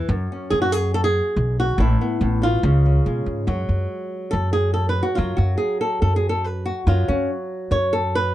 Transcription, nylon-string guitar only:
0.09 1.76 F#2 medium
0.32 1.80 C#4 soft
0.50 0.61 G#4 loud
0.62 0.72 F#4 loud
0.72 0.94 G#4 loud
0.94 1.04 A4 loud
1.04 1.57 G#4 loud
1.60 1.80 F#4 loud
1.79 2.20 A2 medium
1.79 2.64 E4 medium
2.01 2.62 B3 soft
2.21 2.42 A2 medium
2.42 2.63 B2 medium
2.42 3.49 F4 medium
2.64 3.46 C#3 medium
2.86 3.46 C#4 soft
3.06 5.18 G#3 medium
3.47 5.17 F#3 medium
3.47 5.02 F#4 soft
4.31 4.52 A4 medium
4.53 4.73 G#4 loud
4.74 4.89 A4 medium
4.89 5.03 B4 medium
5.03 5.17 F#4 medium
5.15 6.87 F#3 medium
5.15 5.38 F4 medium
5.37 5.57 F#4 medium
5.58 5.80 G#4 medium
5.81 6.01 A4 medium
6.02 6.16 A4 medium
6.16 6.29 G#4 medium
6.29 6.44 A4 medium
6.44 6.66 B4 loud
6.65 6.87 F#4 medium
6.87 8.35 F#3 medium
6.87 7.08 F4 medium
7.08 7.30 C#4 medium
7.72 7.93 C#5 medium
7.93 8.14 A4 loud
8.15 8.35 B4 loud

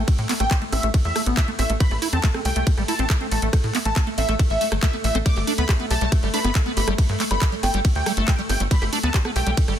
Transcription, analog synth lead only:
0.40 0.55 G5 loud
0.73 0.87 E5 loud
1.05 1.19 E5 loud
1.37 1.47 E5 medium
1.59 1.69 E5 medium
1.80 1.95 B5 loud
2.13 2.27 A5 loud
2.45 2.65 G5 loud
2.88 3.08 A5 loud
3.31 3.41 A5 medium
3.85 4.00 A5 loud
4.18 4.32 E5 loud
4.50 4.65 E5 medium
4.83 4.92 E5 medium
5.04 5.14 E5 medium
5.26 5.40 D6 loud
5.58 5.73 B5 medium
5.90 6.10 A5 loud
6.34 6.53 B5 loud
6.77 6.87 B5 medium
7.31 7.45 B5 medium
7.63 7.78 G5 loud
7.95 8.10 G5 medium
8.28 8.38 G5 medium
8.49 8.59 G5 medium
8.71 8.86 B5 loud
9.03 9.18 A5 loud
9.36 9.55 G5 loud

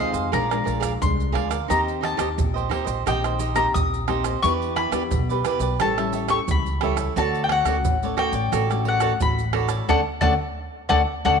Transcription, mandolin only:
0.00 0.30 F5 medium
0.33 0.98 A#5 medium
1.02 1.66 C6 medium
1.70 1.79 A#5 medium
2.05 2.69 A5 medium
3.08 3.55 G5 medium
3.56 3.73 A#5 medium
3.74 4.39 D#6 medium
4.42 4.52 C#6 loud
4.76 5.41 B5 medium
5.81 6.30 A5 medium
6.30 6.48 C#6 medium
6.51 7.18 B5 medium
7.18 7.43 A5 loud
7.44 7.51 G5 medium
7.52 8.15 F#5 loud
8.19 8.88 G5 loud
8.88 9.22 F#5 medium
9.22 9.86 B5 medium
9.89 10.00 D5 medium
9.89 10.00 F#5 medium
9.89 10.00 A5 medium
10.21 10.33 D5 loud
10.21 10.33 F#5 medium
10.21 10.33 A5 medium
10.89 11.01 D5 medium
10.89 11.01 F#5 medium
10.89 11.01 A5 medium
11.25 11.36 D5 medium
11.25 11.36 F#5 loud
11.25 11.36 A5 medium

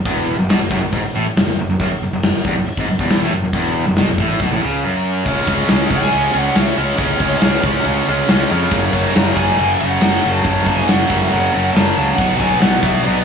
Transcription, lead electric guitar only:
5.96 6.37 G#5 loud
6.38 6.59 F#5 medium
6.58 6.78 E5 loud
6.79 7.61 C#5 medium
9.36 9.79 G#5 medium
9.79 10.33 F#5 medium
10.33 10.76 A5 medium
10.76 10.87 G#5 medium
10.87 11.22 F#5 medium
11.18 11.31 E5 medium
11.27 11.70 F#5 medium
11.73 12.14 A5 loud
12.16 12.37 F#5 loud
12.38 12.59 G#5 loud
12.60 12.84 F#5 medium
12.80 13.02 E5 medium
13.02 13.23 D5 loud

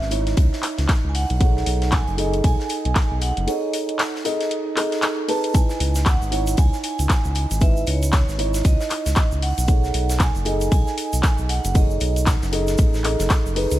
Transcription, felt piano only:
0.10 1.38 D#4 medium
0.10 1.38 E4 medium
0.10 1.39 C#5 medium
1.40 2.15 D#4 medium
1.40 2.16 G#4 medium
1.40 2.16 A4 medium
1.40 2.16 C#5 medium
2.17 3.45 D#4 medium
2.17 3.45 G#4 medium
2.17 3.45 A4 medium
2.17 3.45 D#5 loud
3.47 4.22 D#4 medium
3.47 4.23 G#4 medium
3.47 4.23 A4 medium
3.47 4.23 C#5 medium
4.25 4.75 D#4 medium
4.25 4.75 G#4 medium
4.25 4.75 A4 medium
4.25 4.75 D#5 loud
4.76 5.26 D#4 medium
4.76 5.26 G#4 medium
4.76 5.26 A4 medium
4.76 5.26 D#5 medium
5.28 5.52 D#4 loud
5.28 5.52 G#4 medium
5.28 5.52 A4 medium
5.28 5.52 B4 loud
5.54 6.29 D#4 medium
5.54 6.30 E4 medium
6.31 7.58 D#4 medium
6.31 7.59 E4 medium
6.31 7.59 C#5 loud
7.61 8.36 D#4 medium
7.61 8.36 E4 medium
7.61 8.37 B4 medium
8.38 9.65 D#4 medium
8.38 9.66 E4 medium
8.38 9.66 C#5 loud
9.67 10.43 D#4 medium
9.67 10.43 G#4 medium
9.67 10.44 A4 medium
9.67 10.44 C#5 medium
10.45 11.72 D#4 medium
10.45 11.73 G#4 medium
10.45 11.73 A4 medium
10.45 11.73 D#5 loud
11.74 12.50 D#4 medium
11.74 12.50 G#4 medium
11.74 12.50 A4 medium
11.74 12.51 C#5 medium
12.52 13.02 D#4 medium
12.52 13.02 G#4 medium
12.52 13.02 A4 medium
12.52 13.03 D#5 loud
13.04 13.53 D#4 medium
13.04 13.54 G#4 medium
13.04 13.54 A4 medium
13.04 13.54 D#5 medium
13.56 13.79 D#4 loud
13.56 13.79 G#4 medium
13.56 13.79 A4 medium
13.56 13.79 B4 loud

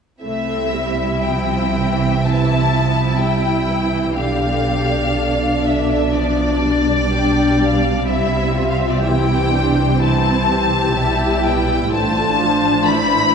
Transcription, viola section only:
0.23 0.69 A3 soft
0.23 1.19 C4 soft
0.72 1.23 G3 soft
1.23 1.74 F3 soft
1.23 3.15 C4 soft
1.75 2.22 E3 soft
2.23 2.71 E3 soft
2.72 3.19 F3 soft
3.18 3.66 G3 soft
3.18 4.15 E4 soft
3.67 4.16 E3 soft
4.15 5.14 D3 soft
4.15 8.07 D4 soft
5.15 6.11 D3 soft
6.14 6.61 F3 soft
6.61 8.06 G3 soft
8.07 9.01 G3 soft
8.07 9.01 C4 soft
9.04 9.96 E3 soft
9.04 9.51 E4 soft
9.51 9.99 D4 soft
9.98 10.93 E3 soft
9.98 10.94 C4 soft
10.96 11.90 G3 soft
10.96 11.92 E4 soft
11.93 12.38 A3 soft
11.93 13.35 D4 soft
12.40 12.85 F3 soft
12.85 13.35 E3 soft

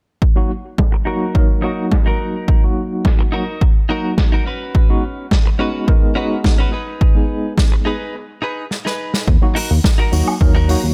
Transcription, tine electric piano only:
0.36 0.50 F#3 medium
0.36 0.50 A#3 medium
0.36 0.50 D#4 medium
0.36 0.50 F#4 loud
1.06 1.32 F#3 medium
1.06 1.32 A#3 medium
1.06 1.32 D#4 medium
1.06 1.32 F#4 medium
1.34 1.60 F#3 medium
1.34 1.60 A#3 medium
1.34 1.60 D#4 medium
1.34 1.60 A#4 medium
1.62 2.59 F#3 medium
1.62 2.60 A#3 medium
1.62 2.60 D#4 medium
1.62 2.60 F#4 medium
2.62 3.30 F#3 medium
2.62 3.30 A#3 medium
2.62 3.30 D#4 medium
2.62 3.31 F#4 medium
3.33 3.42 F#3 medium
3.33 3.43 A#3 medium
3.33 3.43 D#4 medium
3.33 3.43 F#4 medium
3.90 4.45 F#3 medium
3.90 4.45 A#3 medium
3.90 4.45 D#4 medium
3.90 4.45 F#4 medium
4.89 5.03 G#3 medium
4.89 5.03 B3 medium
4.89 5.03 D#4 medium
4.89 5.03 F#4 loud
5.59 5.84 G#3 medium
5.59 5.84 B3 medium
5.59 5.85 D#4 medium
5.59 5.85 F#4 medium
5.87 6.13 G#3 medium
5.87 6.13 B3 medium
5.87 6.13 D#4 medium
5.87 6.13 A#4 medium
6.16 6.71 G#3 medium
6.16 6.71 B3 medium
6.16 6.71 D#4 medium
6.16 6.72 F#4 medium
7.15 7.82 G#3 medium
7.15 7.83 B3 medium
7.15 7.83 D#4 medium
7.15 7.83 G#4 medium
7.85 7.95 G#3 medium
7.85 7.95 B3 medium
7.85 7.95 D#4 medium
7.85 7.96 G#4 medium
9.42 9.56 F#3 medium
9.42 9.56 A#3 medium
9.42 9.56 D#4 medium
9.42 9.56 F#4 loud
10.12 10.37 F#3 medium
10.12 10.38 A#3 medium
10.12 10.38 D#4 medium
10.12 10.38 F#4 medium
10.40 10.66 F#3 medium
10.40 10.66 A#3 medium
10.40 10.66 D#4 medium
10.40 10.66 A#4 loud
10.68 10.94 F#3 medium
10.68 10.94 A#3 medium
10.68 10.94 D#4 medium
10.68 10.94 F#4 loud

